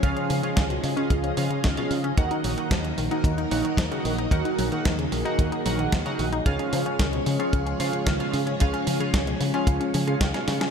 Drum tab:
HH |xxoxxxoxxxoxxxox|xxoxxxoxxxoxxxox|xxoxxxoxxxoxxxox|xxoxxxoxxxoxxxox|
SD |----o-o-----o---|----o-------o---|----o-o-----o---|----o-------o---|
BD |o---o---o---o---|o---o---o---o---|o---o---o---o---|o---o---o---o---|

HH |xxoxxxoxxxoxxxox|
SD |----o-o-----oooo|
BD |o---o---o---o---|